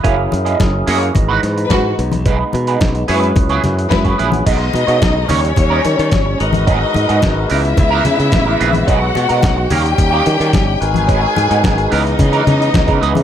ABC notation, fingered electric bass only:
X:1
M:4/4
L:1/16
Q:1/4=109
K:B
V:1 name="Fingered electric bass" clef=bass
F,,,2 F,,2 F,,,2 F,,2 G,,,2 G,,2 G,,2 B,,,2- | B,,,2 B,,2 B,,,2 F,,2 C,,2 F,,2 F,,2 A,,,2 | B,,,2 B,, B,, B,,,2 D,,2 D,,2 D, D, =G,,,2 ^G,,,2- | G,,,2 G,, G,, G,,,2 C,,2 C,,2 C, C, =A,,,2 ^A,,,2 |
B,,,2 B,, B,, B,,,2 D,,2 D,,2 D, D, =G,,,2 ^G,,,2- | G,,,2 G,, G,, G,,,2 C,,2 C,2 C,2 C,, C, C,, C, |]